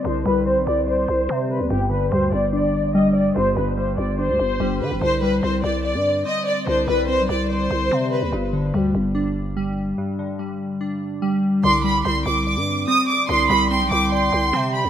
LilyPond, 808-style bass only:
\new Staff \with { instrumentName = "808-style bass" } { \clef bass \time 4/4 \key g \phrygian \tempo 4 = 145 c,8 c,8. b,,16 c,4 c,8 c8. ees,16 | g,,4 d,8 g,,2~ g,,8 | g,,8 g,,4 g,,8. d,16 g,,8 g,,8 d16 g,,16 | c,4 c,8 c,8. g,8. r4 |
c,8 c,8. b,,16 c,4 c,8 c8. ees,16 | g,,4 d,8 g,,2~ g,,8 | r1 | c,4 c,8 c,8. g,8. r4 |
c,8 c,8. b,,16 c,4 c,8 c8. ees,16 | }